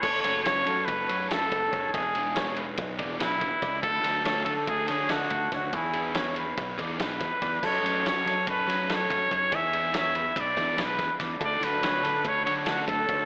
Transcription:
<<
  \new Staff \with { instrumentName = "Clean electric guitar" } { \time 9/8 \key fis \minor \tempo 4. = 95 a'4 cis''8 a'4 cis''8 a'4 cis''8 | gis'4 cis''8 b'4 d''8 b'4 d''8 | a'4 cis''8 a'4 cis''8 a'4 cis''8 | gis'4 cis''8 b'4 d''8 b'4 d''8 |
a'4 cis''8 a'4 cis''8 a'4 cis''8 | gis'4 cis''8 b'4 d''8 b'4 d''8 | a'4 cis''8 a'4 cis''8 a'4 cis''8 | }
  \new Staff \with { instrumentName = "Trumpet" } { \time 9/8 \key fis \minor cis''8 cis''8 cis''4 b'4 a'4. | gis'4 r2 e'4. | a'4 a'8 a'8 gis'8 gis'8 fis'4 fis'8 | e'4 r2 b'4. |
cis''4 cis''4 b'4 cis''4. | e''4 e''4 d''4 b'4 r8 | d''8 b'4. cis''8 cis''8 fis'8 a'4 | }
  \new Staff \with { instrumentName = "Overdriven electric guitar" } { \time 9/8 \key fis \minor r8 <fis a cis' fis'>8 <fis a cis' fis'>8 r4 <fis a cis' fis'>8 <fis a cis' fis'>8 r4 | r8 <e b d' gis'>8 <e b d' gis'>8 r4 <e b d' gis'>8 <e b d' gis'>8 r4 | r8 <fis a d' fis'>8 <fis a d' fis'>8 r4 <fis a d' fis'>8 <fis a d' fis'>8 r4 | r8 <e b d' gis'>8 <e b d' gis'>8 r4 <e b d' gis'>8 <e b d' gis'>8 r4 |
r8 <fis a cis' fis'>8 <fis a cis' fis'>8 r4 <fis a cis' fis'>8 <fis a cis' fis'>8 r4 | r8 <e b d' gis'>8 <e b d' gis'>8 r4 <e b d' gis'>8 <e b d' gis'>8 r4 | r8 <fis a d' fis'>8 <fis a d' fis'>8 r4 <fis a d' fis'>8 <fis a d' fis'>8 r4 | }
  \new Staff \with { instrumentName = "Clean electric guitar" } { \clef bass \time 9/8 \key fis \minor e1~ e8 | r1 r8 | r1 r8 | r1 r8 |
r1 r8 | r1 r8 | r1 r8 | }
  \new Staff \with { instrumentName = "Fingered electric bass" } { \clef bass \time 9/8 \key fis \minor fis,,8 fis,,4 fis,8 fis,,8 fis,4 fis,,8 fis,,8 | e,,2 b,,8 e,,8 b,,8 e,,16 r16 cis,8 | d,8 d,4 d8 d,8 d4 d,8 d,8 | e,2 b,,8 e,8 b,,8 e,16 r16 e,8 |
fis,8 fis,4 fis8 fis,8 fis4 fis,8 fis,8 | e,2 b,,8 e,8 b,,8 e,16 r16 e,8 | d,8 d,4 d8 d,8 d4 d,8 d,8 | }
  \new DrumStaff \with { instrumentName = "Drums" } \drummode { \time 9/8 <cymc bd>8 cymr8 <cymr sn>8 cymr8 <bd cymr>8 cymr8 <cymr sn>8 <bd cymr>8 <bd cymr>8 | <bd cymr>8 cymr8 <cymr sn>8 cymr8 <bd cymr>8 <bd cymr>8 <cymr sn>8 <bd cymr>8 <bd cymr sn>8 | <bd cymr>8 <cymr sn>8 <cymr sn>8 cymr8 <bd cymr>8 <cymr sn>8 <cymr sn>8 <bd cymr>8 <bd cymr sn>8 | <bd cymr>8 cymr8 <cymr sn>8 cymr8 <bd cymr>8 <bd cymr>8 <cymr sn>8 <bd cymr sn>8 <bd cymr>8 |
<cymc bd>8 <cymr sn>8 <cymr sn>8 <cymr sn>8 <bd cymr>8 <cymr sn>8 <cymr sn>8 <bd cymr>8 <bd cymr>8 | <bd cymr>8 cymr8 <cymr sn>8 cymr8 <bd cymr>8 <bd cymr sn>8 <cymr sn>8 <bd cymr sn>8 <bd cymr sn>8 | <bd cymr>8 <cymr sn>8 <cymr sn>8 <cymr sn>8 <bd cymr>8 cymr8 <cymr sn>8 <bd cymr>8 <bd cymr>8 | }
>>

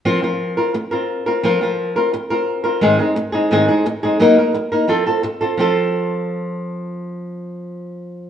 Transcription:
\new Staff \with { instrumentName = "Nylon-string guitar" } { \time 4/4 \tempo 4 = 174 <f c' f' bes'>8 <f c' f' bes'>4 <c' f' bes'>8 r8 <c' f' bes'>4 <c' f' bes'>8 | <f c' f' bes'>8 <f c' f' bes'>4 <c' f' bes'>8 r8 <c' f' bes'>4 <c' f' bes'>8 | <aes, ees aes c' ees' aes'>8 <aes c' ees' aes'>8 r8 <aes c' ees' aes'>8 <aes, ees aes c' ees' aes'>8 <aes c' ees' aes'>8 r8 <aes c' ees' aes'>8 | <ges bes ees' bes'>8 <bes ees' bes'>8 r8 <bes ees' bes'>8 <f c' f' a'>8 <c' f' a'>8 r8 <c' f' a'>8 |
<f c' f' a'>1~ | <f c' f' a'>1 | }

